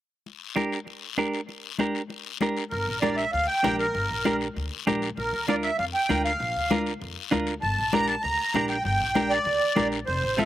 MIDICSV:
0, 0, Header, 1, 5, 480
1, 0, Start_track
1, 0, Tempo, 306748
1, 410, Time_signature, 4, 2, 24, 8
1, 16354, End_track
2, 0, Start_track
2, 0, Title_t, "Accordion"
2, 0, Program_c, 0, 21
2, 4230, Note_on_c, 0, 70, 79
2, 4686, Note_off_c, 0, 70, 0
2, 4715, Note_on_c, 0, 74, 76
2, 4945, Note_off_c, 0, 74, 0
2, 4951, Note_on_c, 0, 76, 88
2, 5183, Note_off_c, 0, 76, 0
2, 5196, Note_on_c, 0, 77, 94
2, 5426, Note_off_c, 0, 77, 0
2, 5432, Note_on_c, 0, 79, 107
2, 5887, Note_off_c, 0, 79, 0
2, 5931, Note_on_c, 0, 70, 76
2, 6828, Note_off_c, 0, 70, 0
2, 8103, Note_on_c, 0, 70, 83
2, 8543, Note_off_c, 0, 70, 0
2, 8580, Note_on_c, 0, 74, 83
2, 8686, Note_off_c, 0, 74, 0
2, 8804, Note_on_c, 0, 76, 91
2, 9030, Note_off_c, 0, 76, 0
2, 9045, Note_on_c, 0, 77, 84
2, 9154, Note_off_c, 0, 77, 0
2, 9291, Note_on_c, 0, 79, 107
2, 9736, Note_off_c, 0, 79, 0
2, 9773, Note_on_c, 0, 77, 80
2, 10668, Note_off_c, 0, 77, 0
2, 11914, Note_on_c, 0, 81, 93
2, 12397, Note_on_c, 0, 82, 88
2, 12415, Note_off_c, 0, 81, 0
2, 12625, Note_off_c, 0, 82, 0
2, 12639, Note_on_c, 0, 81, 99
2, 12866, Note_off_c, 0, 81, 0
2, 12869, Note_on_c, 0, 82, 94
2, 13547, Note_off_c, 0, 82, 0
2, 13593, Note_on_c, 0, 79, 77
2, 13815, Note_off_c, 0, 79, 0
2, 13839, Note_on_c, 0, 79, 93
2, 14547, Note_on_c, 0, 74, 97
2, 14585, Note_off_c, 0, 79, 0
2, 15455, Note_off_c, 0, 74, 0
2, 15748, Note_on_c, 0, 72, 84
2, 16240, Note_on_c, 0, 76, 85
2, 16252, Note_off_c, 0, 72, 0
2, 16349, Note_off_c, 0, 76, 0
2, 16354, End_track
3, 0, Start_track
3, 0, Title_t, "Clean electric guitar"
3, 0, Program_c, 1, 27
3, 871, Note_on_c, 1, 62, 71
3, 880, Note_on_c, 1, 67, 65
3, 887, Note_on_c, 1, 70, 76
3, 1216, Note_off_c, 1, 62, 0
3, 1221, Note_off_c, 1, 67, 0
3, 1224, Note_off_c, 1, 70, 0
3, 1844, Note_on_c, 1, 62, 76
3, 1851, Note_on_c, 1, 67, 60
3, 1858, Note_on_c, 1, 70, 86
3, 2184, Note_off_c, 1, 62, 0
3, 2185, Note_off_c, 1, 67, 0
3, 2190, Note_off_c, 1, 70, 0
3, 2807, Note_on_c, 1, 62, 70
3, 2817, Note_on_c, 1, 67, 65
3, 2827, Note_on_c, 1, 70, 70
3, 3145, Note_off_c, 1, 62, 0
3, 3151, Note_off_c, 1, 67, 0
3, 3151, Note_off_c, 1, 70, 0
3, 3780, Note_on_c, 1, 62, 71
3, 3788, Note_on_c, 1, 67, 57
3, 3794, Note_on_c, 1, 70, 82
3, 4111, Note_off_c, 1, 62, 0
3, 4112, Note_off_c, 1, 67, 0
3, 4118, Note_off_c, 1, 70, 0
3, 4729, Note_on_c, 1, 62, 69
3, 4739, Note_on_c, 1, 67, 47
3, 4740, Note_on_c, 1, 70, 76
3, 5067, Note_off_c, 1, 62, 0
3, 5067, Note_off_c, 1, 67, 0
3, 5071, Note_off_c, 1, 70, 0
3, 5692, Note_on_c, 1, 62, 75
3, 5702, Note_on_c, 1, 67, 63
3, 5705, Note_on_c, 1, 70, 79
3, 6027, Note_off_c, 1, 62, 0
3, 6029, Note_off_c, 1, 67, 0
3, 6033, Note_off_c, 1, 70, 0
3, 6655, Note_on_c, 1, 62, 79
3, 6665, Note_on_c, 1, 67, 72
3, 6674, Note_on_c, 1, 70, 90
3, 6988, Note_off_c, 1, 62, 0
3, 6994, Note_off_c, 1, 67, 0
3, 6998, Note_off_c, 1, 70, 0
3, 7620, Note_on_c, 1, 62, 84
3, 7624, Note_on_c, 1, 67, 76
3, 7638, Note_on_c, 1, 70, 93
3, 7950, Note_off_c, 1, 62, 0
3, 7954, Note_off_c, 1, 67, 0
3, 7957, Note_off_c, 1, 70, 0
3, 8583, Note_on_c, 1, 62, 67
3, 8590, Note_on_c, 1, 65, 64
3, 8602, Note_on_c, 1, 70, 64
3, 8912, Note_off_c, 1, 62, 0
3, 8917, Note_off_c, 1, 65, 0
3, 8919, Note_off_c, 1, 70, 0
3, 9534, Note_on_c, 1, 62, 72
3, 9546, Note_on_c, 1, 65, 57
3, 9553, Note_on_c, 1, 70, 72
3, 9869, Note_off_c, 1, 62, 0
3, 9871, Note_off_c, 1, 65, 0
3, 9871, Note_off_c, 1, 70, 0
3, 10494, Note_on_c, 1, 62, 75
3, 10503, Note_on_c, 1, 65, 67
3, 10512, Note_on_c, 1, 70, 73
3, 10827, Note_off_c, 1, 62, 0
3, 10833, Note_off_c, 1, 65, 0
3, 10833, Note_off_c, 1, 70, 0
3, 11442, Note_on_c, 1, 62, 83
3, 11453, Note_on_c, 1, 65, 78
3, 11460, Note_on_c, 1, 70, 90
3, 11781, Note_off_c, 1, 62, 0
3, 11787, Note_off_c, 1, 65, 0
3, 11790, Note_off_c, 1, 70, 0
3, 12411, Note_on_c, 1, 62, 62
3, 12424, Note_on_c, 1, 67, 54
3, 12429, Note_on_c, 1, 70, 68
3, 12747, Note_off_c, 1, 62, 0
3, 12749, Note_off_c, 1, 67, 0
3, 12755, Note_off_c, 1, 70, 0
3, 13387, Note_on_c, 1, 62, 71
3, 13392, Note_on_c, 1, 67, 66
3, 13402, Note_on_c, 1, 70, 64
3, 13713, Note_off_c, 1, 62, 0
3, 13717, Note_off_c, 1, 67, 0
3, 13718, Note_off_c, 1, 70, 0
3, 14323, Note_on_c, 1, 62, 67
3, 14335, Note_on_c, 1, 67, 52
3, 14337, Note_on_c, 1, 70, 68
3, 14663, Note_off_c, 1, 62, 0
3, 14664, Note_off_c, 1, 67, 0
3, 14668, Note_off_c, 1, 70, 0
3, 15278, Note_on_c, 1, 62, 82
3, 15284, Note_on_c, 1, 67, 74
3, 15292, Note_on_c, 1, 70, 91
3, 15618, Note_off_c, 1, 62, 0
3, 15623, Note_off_c, 1, 67, 0
3, 15624, Note_off_c, 1, 70, 0
3, 16239, Note_on_c, 1, 60, 61
3, 16250, Note_on_c, 1, 65, 54
3, 16253, Note_on_c, 1, 69, 74
3, 16354, Note_off_c, 1, 60, 0
3, 16354, Note_off_c, 1, 65, 0
3, 16354, Note_off_c, 1, 69, 0
3, 16354, End_track
4, 0, Start_track
4, 0, Title_t, "Upright bass"
4, 0, Program_c, 2, 32
4, 4258, Note_on_c, 2, 31, 87
4, 4447, Note_off_c, 2, 31, 0
4, 4501, Note_on_c, 2, 34, 73
4, 5073, Note_off_c, 2, 34, 0
4, 5221, Note_on_c, 2, 38, 85
4, 5409, Note_off_c, 2, 38, 0
4, 5702, Note_on_c, 2, 34, 82
4, 6081, Note_off_c, 2, 34, 0
4, 6178, Note_on_c, 2, 31, 86
4, 6367, Note_off_c, 2, 31, 0
4, 6423, Note_on_c, 2, 34, 73
4, 6993, Note_off_c, 2, 34, 0
4, 7140, Note_on_c, 2, 38, 83
4, 7328, Note_off_c, 2, 38, 0
4, 7615, Note_on_c, 2, 34, 83
4, 7996, Note_off_c, 2, 34, 0
4, 8099, Note_on_c, 2, 34, 91
4, 8287, Note_off_c, 2, 34, 0
4, 8337, Note_on_c, 2, 38, 79
4, 8910, Note_off_c, 2, 38, 0
4, 9063, Note_on_c, 2, 41, 83
4, 9250, Note_off_c, 2, 41, 0
4, 9539, Note_on_c, 2, 38, 85
4, 9919, Note_off_c, 2, 38, 0
4, 10016, Note_on_c, 2, 34, 86
4, 10205, Note_off_c, 2, 34, 0
4, 10267, Note_on_c, 2, 38, 71
4, 10836, Note_off_c, 2, 38, 0
4, 10979, Note_on_c, 2, 41, 81
4, 11166, Note_off_c, 2, 41, 0
4, 11460, Note_on_c, 2, 38, 83
4, 11839, Note_off_c, 2, 38, 0
4, 11943, Note_on_c, 2, 31, 82
4, 12129, Note_off_c, 2, 31, 0
4, 12184, Note_on_c, 2, 34, 73
4, 12754, Note_off_c, 2, 34, 0
4, 12900, Note_on_c, 2, 38, 88
4, 13087, Note_off_c, 2, 38, 0
4, 13372, Note_on_c, 2, 34, 81
4, 13754, Note_off_c, 2, 34, 0
4, 13851, Note_on_c, 2, 31, 90
4, 14042, Note_off_c, 2, 31, 0
4, 14083, Note_on_c, 2, 34, 75
4, 14660, Note_off_c, 2, 34, 0
4, 14802, Note_on_c, 2, 38, 82
4, 14996, Note_off_c, 2, 38, 0
4, 15290, Note_on_c, 2, 34, 82
4, 15673, Note_off_c, 2, 34, 0
4, 15775, Note_on_c, 2, 29, 90
4, 15964, Note_off_c, 2, 29, 0
4, 16015, Note_on_c, 2, 33, 81
4, 16354, Note_off_c, 2, 33, 0
4, 16354, End_track
5, 0, Start_track
5, 0, Title_t, "Drums"
5, 410, Note_on_c, 9, 63, 30
5, 414, Note_on_c, 9, 74, 60
5, 567, Note_off_c, 9, 63, 0
5, 571, Note_off_c, 9, 74, 0
5, 883, Note_on_c, 9, 63, 70
5, 893, Note_on_c, 9, 73, 62
5, 1040, Note_off_c, 9, 63, 0
5, 1049, Note_off_c, 9, 73, 0
5, 1134, Note_on_c, 9, 73, 62
5, 1290, Note_off_c, 9, 73, 0
5, 1360, Note_on_c, 9, 63, 30
5, 1373, Note_on_c, 9, 74, 61
5, 1516, Note_off_c, 9, 63, 0
5, 1530, Note_off_c, 9, 74, 0
5, 1841, Note_on_c, 9, 63, 71
5, 1854, Note_on_c, 9, 73, 58
5, 1998, Note_off_c, 9, 63, 0
5, 2011, Note_off_c, 9, 73, 0
5, 2089, Note_on_c, 9, 73, 61
5, 2246, Note_off_c, 9, 73, 0
5, 2325, Note_on_c, 9, 63, 32
5, 2329, Note_on_c, 9, 74, 66
5, 2482, Note_off_c, 9, 63, 0
5, 2485, Note_off_c, 9, 74, 0
5, 2794, Note_on_c, 9, 63, 82
5, 2804, Note_on_c, 9, 73, 63
5, 2951, Note_off_c, 9, 63, 0
5, 2961, Note_off_c, 9, 73, 0
5, 3051, Note_on_c, 9, 73, 64
5, 3207, Note_off_c, 9, 73, 0
5, 3281, Note_on_c, 9, 63, 30
5, 3291, Note_on_c, 9, 74, 68
5, 3437, Note_off_c, 9, 63, 0
5, 3448, Note_off_c, 9, 74, 0
5, 3765, Note_on_c, 9, 63, 73
5, 3769, Note_on_c, 9, 73, 65
5, 3922, Note_off_c, 9, 63, 0
5, 3925, Note_off_c, 9, 73, 0
5, 4016, Note_on_c, 9, 73, 66
5, 4172, Note_off_c, 9, 73, 0
5, 4248, Note_on_c, 9, 74, 66
5, 4257, Note_on_c, 9, 63, 31
5, 4404, Note_off_c, 9, 74, 0
5, 4414, Note_off_c, 9, 63, 0
5, 4731, Note_on_c, 9, 73, 66
5, 4742, Note_on_c, 9, 63, 80
5, 4888, Note_off_c, 9, 73, 0
5, 4899, Note_off_c, 9, 63, 0
5, 4972, Note_on_c, 9, 73, 67
5, 5128, Note_off_c, 9, 73, 0
5, 5214, Note_on_c, 9, 74, 61
5, 5228, Note_on_c, 9, 63, 31
5, 5371, Note_off_c, 9, 74, 0
5, 5384, Note_off_c, 9, 63, 0
5, 5699, Note_on_c, 9, 73, 66
5, 5701, Note_on_c, 9, 63, 75
5, 5856, Note_off_c, 9, 73, 0
5, 5857, Note_off_c, 9, 63, 0
5, 5937, Note_on_c, 9, 73, 63
5, 6093, Note_off_c, 9, 73, 0
5, 6176, Note_on_c, 9, 74, 65
5, 6178, Note_on_c, 9, 63, 33
5, 6333, Note_off_c, 9, 74, 0
5, 6334, Note_off_c, 9, 63, 0
5, 6653, Note_on_c, 9, 63, 80
5, 6656, Note_on_c, 9, 73, 70
5, 6809, Note_off_c, 9, 63, 0
5, 6813, Note_off_c, 9, 73, 0
5, 6900, Note_on_c, 9, 73, 68
5, 7056, Note_off_c, 9, 73, 0
5, 7144, Note_on_c, 9, 74, 68
5, 7145, Note_on_c, 9, 63, 31
5, 7301, Note_off_c, 9, 74, 0
5, 7302, Note_off_c, 9, 63, 0
5, 7623, Note_on_c, 9, 63, 77
5, 7624, Note_on_c, 9, 73, 70
5, 7779, Note_off_c, 9, 63, 0
5, 7780, Note_off_c, 9, 73, 0
5, 7858, Note_on_c, 9, 73, 65
5, 8015, Note_off_c, 9, 73, 0
5, 8096, Note_on_c, 9, 74, 71
5, 8101, Note_on_c, 9, 63, 34
5, 8252, Note_off_c, 9, 74, 0
5, 8257, Note_off_c, 9, 63, 0
5, 8575, Note_on_c, 9, 73, 68
5, 8582, Note_on_c, 9, 63, 76
5, 8731, Note_off_c, 9, 73, 0
5, 8738, Note_off_c, 9, 63, 0
5, 8813, Note_on_c, 9, 73, 66
5, 8969, Note_off_c, 9, 73, 0
5, 9057, Note_on_c, 9, 63, 33
5, 9061, Note_on_c, 9, 74, 66
5, 9214, Note_off_c, 9, 63, 0
5, 9217, Note_off_c, 9, 74, 0
5, 9540, Note_on_c, 9, 63, 75
5, 9541, Note_on_c, 9, 73, 66
5, 9696, Note_off_c, 9, 63, 0
5, 9698, Note_off_c, 9, 73, 0
5, 9790, Note_on_c, 9, 73, 68
5, 9947, Note_off_c, 9, 73, 0
5, 10017, Note_on_c, 9, 74, 67
5, 10024, Note_on_c, 9, 63, 35
5, 10173, Note_off_c, 9, 74, 0
5, 10180, Note_off_c, 9, 63, 0
5, 10498, Note_on_c, 9, 63, 81
5, 10500, Note_on_c, 9, 73, 65
5, 10654, Note_off_c, 9, 63, 0
5, 10656, Note_off_c, 9, 73, 0
5, 10741, Note_on_c, 9, 73, 63
5, 10898, Note_off_c, 9, 73, 0
5, 10978, Note_on_c, 9, 74, 65
5, 10983, Note_on_c, 9, 63, 33
5, 11134, Note_off_c, 9, 74, 0
5, 11140, Note_off_c, 9, 63, 0
5, 11449, Note_on_c, 9, 73, 69
5, 11457, Note_on_c, 9, 63, 80
5, 11605, Note_off_c, 9, 73, 0
5, 11613, Note_off_c, 9, 63, 0
5, 11686, Note_on_c, 9, 73, 64
5, 11843, Note_off_c, 9, 73, 0
5, 11926, Note_on_c, 9, 74, 67
5, 11935, Note_on_c, 9, 63, 33
5, 12082, Note_off_c, 9, 74, 0
5, 12092, Note_off_c, 9, 63, 0
5, 12408, Note_on_c, 9, 63, 81
5, 12412, Note_on_c, 9, 73, 64
5, 12564, Note_off_c, 9, 63, 0
5, 12568, Note_off_c, 9, 73, 0
5, 12638, Note_on_c, 9, 73, 68
5, 12794, Note_off_c, 9, 73, 0
5, 12876, Note_on_c, 9, 74, 65
5, 12890, Note_on_c, 9, 63, 33
5, 13033, Note_off_c, 9, 74, 0
5, 13047, Note_off_c, 9, 63, 0
5, 13350, Note_on_c, 9, 73, 66
5, 13368, Note_on_c, 9, 63, 79
5, 13507, Note_off_c, 9, 73, 0
5, 13525, Note_off_c, 9, 63, 0
5, 13585, Note_on_c, 9, 73, 64
5, 13742, Note_off_c, 9, 73, 0
5, 13825, Note_on_c, 9, 74, 69
5, 13841, Note_on_c, 9, 63, 31
5, 13982, Note_off_c, 9, 74, 0
5, 13997, Note_off_c, 9, 63, 0
5, 14312, Note_on_c, 9, 73, 66
5, 14324, Note_on_c, 9, 63, 79
5, 14468, Note_off_c, 9, 73, 0
5, 14481, Note_off_c, 9, 63, 0
5, 14560, Note_on_c, 9, 73, 69
5, 14717, Note_off_c, 9, 73, 0
5, 14792, Note_on_c, 9, 74, 68
5, 14814, Note_on_c, 9, 63, 32
5, 14948, Note_off_c, 9, 74, 0
5, 14971, Note_off_c, 9, 63, 0
5, 15280, Note_on_c, 9, 63, 79
5, 15293, Note_on_c, 9, 73, 68
5, 15437, Note_off_c, 9, 63, 0
5, 15450, Note_off_c, 9, 73, 0
5, 15522, Note_on_c, 9, 73, 65
5, 15678, Note_off_c, 9, 73, 0
5, 15765, Note_on_c, 9, 74, 68
5, 15772, Note_on_c, 9, 63, 33
5, 15922, Note_off_c, 9, 74, 0
5, 15929, Note_off_c, 9, 63, 0
5, 16242, Note_on_c, 9, 73, 68
5, 16254, Note_on_c, 9, 63, 80
5, 16354, Note_off_c, 9, 63, 0
5, 16354, Note_off_c, 9, 73, 0
5, 16354, End_track
0, 0, End_of_file